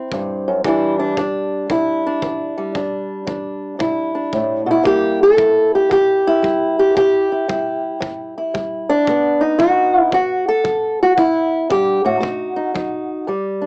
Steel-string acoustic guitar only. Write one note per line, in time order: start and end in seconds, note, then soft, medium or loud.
0.00 0.62 C4 soft
0.00 0.64 E4 medium
0.13 0.47 G2 medium
0.48 0.64 F#2 medium
0.65 1.14 E2 medium
0.65 1.17 E3 medium
0.65 2.57 G3 medium
0.65 0.99 D4 medium
0.65 0.99 E4 medium
0.99 1.18 D4 medium
1.18 1.67 E3 medium
1.18 2.05 D4 medium
1.70 2.19 B2 medium
1.70 2.79 E4 medium
2.07 2.74 D4 medium
2.22 2.72 E3 medium
2.58 4.84 G3 medium
2.75 3.24 E2 medium
2.75 3.27 D4 soft
3.27 3.77 E3 medium
3.27 4.14 D4 soft
3.79 4.29 B2 medium
3.79 4.70 E4 medium
4.15 4.83 D4 soft
4.33 4.66 A2 medium
4.66 4.83 B2 medium
4.71 4.85 E4 medium
4.83 5.34 C3 medium
4.83 5.36 G3 soft
4.83 6.93 A#3 soft
4.83 5.36 E4 soft
4.83 5.21 G4 loud
5.23 5.75 A4 loud
5.37 5.87 G3 medium
5.37 6.25 E4 soft
5.75 5.91 G4 medium
5.89 6.39 G2 medium
5.89 6.78 G4 loud
6.27 7.31 E4 medium
6.42 6.92 G3 medium
6.79 6.96 G4 medium
6.95 7.45 C3 medium
6.95 8.89 G4 loud
7.32 7.48 E4 soft
7.48 7.98 G3 medium
7.48 8.36 E4 soft
8.00 8.50 G2 medium
8.38 9.05 E4 soft
8.54 9.03 G3 medium
8.89 9.42 D4 medium
9.08 9.57 B2 medium
9.08 12.07 B3 soft
9.41 10.12 D#4 medium
9.59 10.10 F#3 medium
9.59 10.01 F#4 loud
10.01 10.12 E4 loud
10.13 10.62 F#2 medium
10.13 10.48 F#4 medium
10.48 11.01 A4 medium
10.64 11.14 F#3 medium
11.03 11.12 F#4 medium
11.17 11.66 E2 medium
11.17 11.71 E4 medium
11.70 12.04 G2 medium
11.70 12.05 G4 medium
12.04 12.20 A2 medium
12.04 13.28 F#4 medium
12.20 12.71 B2 medium
12.20 12.55 D#4 medium
12.56 12.74 D#4 soft
12.74 13.24 F#3 medium
12.74 13.26 D#4 soft
13.27 13.66 E2 medium
13.27 13.66 G3 soft
13.62 13.66 D4 soft